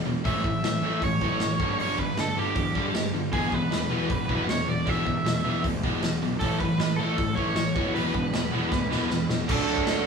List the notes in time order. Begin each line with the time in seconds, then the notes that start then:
0.06 E1 E2 B2 E3 G#3
0.24 A1 A2 E3 A3 E5, kick, open hi-hat
0.43 A1 A2 E3, kick
0.63 A1 A2 E3 E5, snare, open hi-hat
0.82 A1 A2 E3 A3
1.02 A1 A2 E3 C#5, kick, open hi-hat
1.21 A1 A2 E3 A3, kick
1.40 G#1 A2 E3, snare, open hi-hat
1.59 G1 G2 D3 G3, kick
1.77 G1 G2 D3 C#5, open hi-hat
1.81 G3
1.98 G1 G2 D3 B4, kick
2.16 G1 G2 D3 A4, snare, open hi-hat
2.35 G1 G2 D3 G3 G4
2.55 E2 G2 D3, kick, open hi-hat
2.75 G1 G2 D3 G3, kick
2.93 G1 G2 D3, snare, open hi-hat
3.12 G1 G2 D3
3.32 E1 E2 B2 E3 G#3 B3 G#4, kick, open hi-hat
3.52 E1 E2 B2 E3 G#3 B4, kick
3.71 E1 E2 B2 E3 G#3 B4, snare, open hi-hat
3.90 E1 E2 B2 E3 G#3 B3
4.09 E1 E2 B2 E3 G#3 B4, kick, open hi-hat
4.28 E1 E2 B2 E3 G#3 B3, kick
4.47 E1 E2 B2 E3 G#3 C#5, snare, open hi-hat
4.66 E1 E2 B2 E3 G#3 D5
4.86 E1 E2 B2 E3 G#3 B3 E5, kick, open hi-hat
5.06 E1 E2 B2 E3 G#3, kick
5.24 E1 E2 B2 E3 G#3, snare, open hi-hat
5.44 E1 E2 B2 E3 G#3 B3
5.63 D2 E2 B2 E3 G#3, kick, open hi-hat
5.83 E1 E2 B2 E3 G#3 B3, kick
6.02 E1 E2 B2 E3 G#3, snare, open hi-hat
6.21 B1 E2 B2 E3 G#3
6.39 A1 A2 E3 A3 A4, kick, open hi-hat
6.60 A1 A2 E3 B4, kick
6.78 A1 A2 E3 B4, snare, open hi-hat
6.96 A1 A2 E3 A3 A4
7.17 A1 A2 E3, kick, open hi-hat
7.36 A1 A2 E3 A3 C#5, kick
7.56 A1 A2 E3, snare, open hi-hat
7.75 E1 E2 B2 E3 G#3 B3, kick
7.94 E1 E2 B2 E3 G#3 B3 B4, open hi-hat
8.13 E1 E2 B2 E3 G#3, kick
8.33 E1 E2 B2 E3 G#3, snare, open hi-hat
8.52 E1 E2 B2 E3 G#3 B3
8.70 D2 E2 B2 E3 G#3, kick, snare
8.90 E1 E2 B2 E3 G#3 B3, snare
9.09 E1 E2 B2 E3 G#3, snare
9.29 E1 E2 B2 E3 G#3, snare
9.48 D2 D3 F#3 A3 D4 A4, kick, crash
9.66 D2, crash
9.78 kick
9.86 D2, snare, crash